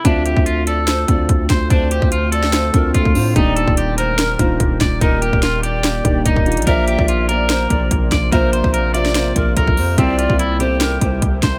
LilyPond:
<<
  \new Staff \with { instrumentName = "Pan flute" } { \time 4/4 \key d \minor \tempo 4 = 145 e''4. d''8 c''8 d''8 r4 | c''4. d''8 c''8 bes'8 a'8 c''8 | d''4. c''8 bes'8 c''8 r4 | bes'4. d''4. r4 |
e''4. d''8 c''8 d''8 r4 | c''4. d''8 c''8 bes'8 a'8 c''8 | d''4. c''8 bes'8 c''8 r4 | }
  \new Staff \with { instrumentName = "Clean electric guitar" } { \time 4/4 \key d \minor d'8 g'8 f'8 a'2 c''8 | d'8 g'8 f'8 a'4. f'4 | ees'8 a'8 g'8 bes'2 d''8 | ees'8 g'8 f'8 g'4. ees'4 |
bes'8 g'8 f'8 bes'2 d''8 | bes'8 c''8 bes'8 d''4. bes'4 | c'8 f'8 e'8 g'2 c''8 | }
  \new Staff \with { instrumentName = "Grand piano" } { \time 4/4 \key d \minor <d a c' f'>4. r4 <d a c' f'>4. | r2 r8 <d a c' f'>8. r16 <d a c' f'>16 r16 | <ees bes d' g'>4. r4 <ees bes d' f'>4. | r2 r8 <ees bes d' g'>8. r16 <ees bes d' f'>16 r16 |
<bes f' c'' d''>8 r16 <bes f' c'' d''>8 r16 <bes f' c'' d''>4. r4 | <bes f' c'' e''>4 r8 <bes f' c'' e''>4. r4 | <c c' e' g'>8 r16 <c c' e' g'>8 r16 <c c' e' a'>4. r4 | }
  \new Staff \with { instrumentName = "Ambient pad" } { \time 4/4 \key d \minor << { <d f'>1~ | <d f'>1 | <ees g'>1~ | <ees g'>1 |
<c f'>1~ | <c f'>1 | <c g'>1 | } \\ { <a c'>1~ | <a c'>1 | <bes d''>1~ | <bes d''>1~ |
<bes d''>1~ | <bes d''>1 | <g e'>1 | } >> }
  \new Staff \with { instrumentName = "808-style bass" } { \clef bass \time 4/4 \key d \minor d,8. d,4.~ d,16 d,8 d,8 d,8 | d,8. d,4.~ d,16 d,8 d,8 a,8 | ees,,8. ees,,4.~ ees,,16 ees,,8 ees,,8 ees,,8 | ees,,8. ees,,4.~ ees,,16 ees,,8 ees,,8. bes,,16 |
bes,,8. bes,,4.~ bes,,16 bes,,8 bes,,8 bes,,8 | bes,,8. bes,,4.~ bes,,16 bes,,8 bes,,8 f,8 | c,8. c,4.~ c,16 c,8 c,8 c,8 | }
  \new DrumStaff \with { instrumentName = "Drums" } \drummode { \time 4/4 <hh bd>8 hh16 bd16 hh8 hh8 <hh sn>8 <hh bd>8 <hh bd>8 <hh bd sn>8 | <hh bd>8 hh16 bd16 hh8 hh16 sn16 <hh sn>8 <hh bd>8 <hh bd>16 bd16 hho8 | <hh bd>8 hh16 bd16 hh8 hh8 <hh sn>8 <hh bd>8 <hh bd>8 <hh bd sn>8 | <hh bd>8 hh16 bd16 <hh sn>8 hh8 <hh sn>8 <hh bd>8 <hh bd>16 bd16 hh32 hh32 hh32 hh32 |
<hh bd>8 hh16 bd16 hh8 hh8 <hh sn>8 <hh bd>8 <hh bd>8 <hh bd sn>8 | <hh bd>8 hh16 bd16 hh8 hh16 sn16 <hh sn>8 <hh bd>8 <hh bd>16 bd16 hho8 | <hh bd>8 hh16 bd16 hh8 hh8 <hh sn>8 <hh bd>8 <hh bd>8 <hh bd sn>8 | }
>>